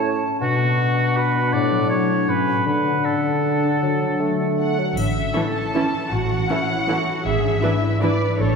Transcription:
0.00 0.24 A2 soft
0.00 0.43 A2 soft
0.00 0.43 C#4 soft
0.00 0.22 E4 soft
0.00 0.42 C#5 soft
0.00 0.37 A5 soft
0.06 0.43 A4 soft
0.23 0.42 E4 soft
0.40 1.54 B2 soft
0.40 1.55 B2 soft
0.40 2.30 D4 soft
0.40 1.18 F#4 medium
0.40 2.34 F#5 soft
0.59 1.54 B3 soft
0.78 1.16 F#4 soft
0.97 1.54 B4 soft
1.17 1.88 F#4 soft
1.17 1.55 B4 medium
1.36 2.08 D4 soft
1.52 2.27 A2 soft
1.52 2.38 A2 soft
1.52 1.89 D5 medium
1.71 3.99 F#3 soft
1.89 2.46 F#4 soft
1.89 2.31 C#5 medium
2.09 2.30 D4 soft
2.29 2.67 A2 soft
2.29 2.65 C#4 soft
2.29 2.66 B4 medium
2.47 2.67 C#4 soft
2.47 3.03 F#4 soft
2.65 3.81 D3 soft
2.65 2.98 D3 soft
2.65 4.75 D4 soft
2.65 3.06 B4 medium
2.65 4.75 F#5 soft
2.84 3.63 D4 soft
3.04 3.78 D3 soft
3.04 3.43 F#4 soft
3.04 4.60 A4 soft
3.24 4.39 D5 soft
3.45 4.18 F#4 soft
3.64 4.78 D4 soft
3.82 4.99 D3 soft
3.82 4.22 F#3 soft
4.00 4.99 F#3 soft
4.19 4.80 A3 soft
4.19 4.58 F#4 soft
4.40 4.99 D5 soft
4.59 4.99 F#4 soft
4.59 4.95 F#5 medium
4.79 4.97 F#3 soft
4.79 4.99 D4 soft
4.97 5.27 A1 soft
4.97 6.11 A2 soft
4.97 5.55 E5 medium
4.97 triangle soft
5.16 5.93 C#4 soft
5.35 5.43 E3 soft
5.35 5.43 C#4 soft
5.35 5.43 E4 soft
5.35 5.43 A4 soft
5.35 6.48 A4 soft
5.35 6.08 A4 soft
5.55 6.68 C#5 soft
5.55 6.11 A5 soft
5.74 5.82 E3 soft
5.74 5.82 C#4 soft
5.74 5.83 E4 soft
5.74 5.83 A4 soft
5.94 7.06 C#4 soft
6.12 6.41 A1 soft
6.12 7.27 A2 soft
6.12 6.49 F#4 soft
6.12 7.25 F#5 medium
6.31 7.27 E3 soft
6.49 6.58 E3 soft
6.49 6.58 C#4 soft
6.49 6.57 E4 soft
6.49 6.88 E4 soft
6.49 6.57 A4 soft
6.49 7.27 A4 soft
6.69 7.27 C#5 soft
6.88 6.97 E3 soft
6.88 6.97 C#4 soft
6.88 6.96 E4 soft
6.88 8.01 E4 soft
6.88 7.26 F#4 soft
6.88 6.96 A4 soft
7.08 7.27 C#4 soft
7.25 7.55 G#1 soft
7.25 8.40 G#2 soft
7.25 7.62 G#4 soft
7.25 8.02 E5 soft
7.44 8.19 D4 soft
7.62 7.71 E3 soft
7.62 7.71 D4 soft
7.62 8.01 E4 soft
7.62 7.70 E4 soft
7.62 8.40 B4 soft
7.62 7.71 B4 soft
7.82 8.40 D5 soft
8.02 8.10 E3 soft
8.02 8.10 D4 soft
8.02 8.56 E4 soft
8.02 8.10 E4 soft
8.02 8.10 B4 soft
8.02 8.39 B4 soft
8.02 8.38 D5 medium
8.21 8.40 D4 soft
8.39 8.56 A1 soft
8.39 8.56 A2 soft
8.39 8.56 A4 soft
8.39 8.56 C#5 medium

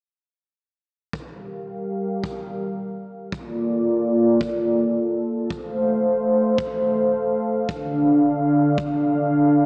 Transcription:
1.13 3.30 G3 medium
1.13 3.30 G4 medium
1.13 3.30 A#4 medium
1.13 3.30 F5 medium
1.13 kick medium
2.24 kick loud
3.32 5.48 A#3 medium
3.32 5.48 F4 medium
3.32 9.66 A4 medium
3.32 5.48 D5 medium
3.32 kick loud
4.41 kick loud
5.50 7.66 A3 medium
5.50 7.66 C5 medium
5.50 9.66 F5 medium
5.50 kick loud
6.58 kick loud
7.68 9.66 D3 medium
7.68 9.66 D4 medium
7.68 kick loud
8.78 kick loud

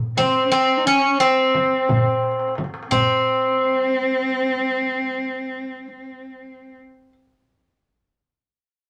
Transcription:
0.17 0.43 C4 medium
0.17 0.50 C4 medium
0.17 darbuka tek medium
0.17 frame drum medium
0.45 0.52 C#4 medium
0.50 0.79 C4 medium
0.50 0.84 C4 medium
0.77 0.86 D#4 medium
0.84 1.19 C#4 medium
0.84 1.20 C#4 medium
0.84 darbuka ka soft
1.18 2.56 C4 medium
1.18 2.53 C4 medium
1.18 darbuka ka soft
1.55 frame drum medium
1.89 darbuka dum medium
1.89 frame drum medium
2.23 darbuka tek medium
2.32 darbuka ka medium
2.40 darbuka tek medium
2.48 darbuka ka medium
2.55 darbuka tek medium
2.55 frame drum medium
2.64 darbuka ka medium
2.74 darbuka tek medium
2.83 darbuka ka medium
2.89 6.73 C4 loud
2.89 7.12 C4 medium
2.89 darbuka dum medium
2.89 frame drum medium

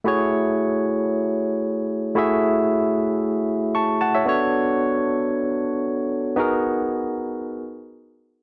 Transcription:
0.04 2.11 A3 medium
0.04 2.12 E4 medium
0.04 2.12 F#4 medium
0.04 2.13 G#4 medium
0.04 2.13 C#5 medium
2.15 4.22 A3 medium
2.15 4.22 E4 medium
2.15 4.23 F#4 medium
2.15 4.23 G#4 medium
2.15 3.72 E5 medium
3.75 4.00 A5 medium
3.75 3.99 C#6 medium
4.01 4.14 F#5 medium
4.01 4.14 A5 medium
4.15 4.28 C#5 medium
4.15 4.39 E5 medium
4.25 6.32 B3 medium
4.25 6.33 D4 medium
4.25 6.33 F#4 medium
4.25 6.34 A4 medium
4.25 6.34 C#5 medium
6.36 8.43 B3 medium
6.36 8.43 D#4 medium
6.36 8.43 F#4 medium
6.36 8.43 G#4 medium
6.36 8.43 A#4 medium

